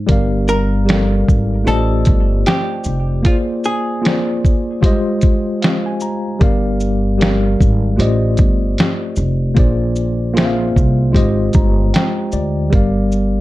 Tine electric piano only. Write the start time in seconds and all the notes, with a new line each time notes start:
Already playing: G#2 G#3 D#4
0.07 G3 G4 A#4 D5
0.12 F5
0.85 G3 G4 A4 D5
0.90 F5
0.95 A#4
1.64 A3 F4 G4 C5
1.68 D5 D#5
3.23 A#3 F4 G#4 C5
3.28 D5
4.02 A#3 F4 G#4 C5
4.06 D5
4.81 G3 F4 G4 C5
4.86 G#3 D#5
5.62 F5
5.86 G#5
6.02 A#5
6.39 G3 G4 A#4 D5
6.44 F5
7.18 G3 G4 A#4 D5
7.23 F5
7.96 A3 F4 G4 C5 D5
8.01 D#5
9.55 A#3 F4 G#4 C5
9.59 D5
10.34 A#3 F4 G#4 C5
10.38 E5
10.45 F5
11.12 G#3 F4 G4 C5
11.17 D#5
11.54 A#5
11.94 G5
12.33 D5
12.70 G3 G4 A#4 D5
12.75 F5